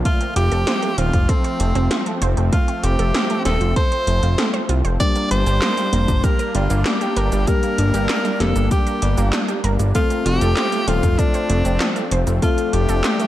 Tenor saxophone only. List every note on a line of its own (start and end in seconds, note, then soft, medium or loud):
0.05 0.34 F4 loud
0.36 1.00 G4 loud
0.98 1.31 F4 loud
1.29 2.22 C4 medium
2.53 2.85 F4 loud
2.84 3.45 G4 loud
3.45 3.74 A4 loud
3.76 4.65 C5 loud
5.00 5.29 D5 loud
5.31 6.25 C5 loud
6.24 6.54 A#4 loud
6.55 6.87 F4 medium
6.86 7.49 G4 loud
7.48 8.42 A#4 loud
8.40 8.71 A4 loud
8.71 9.60 G4 medium
9.95 10.28 F4 loud
10.26 10.89 G4 loud
10.88 11.20 F4 loud
11.19 12.11 D4 loud
12.43 12.75 F4 medium
12.73 13.27 G4 loud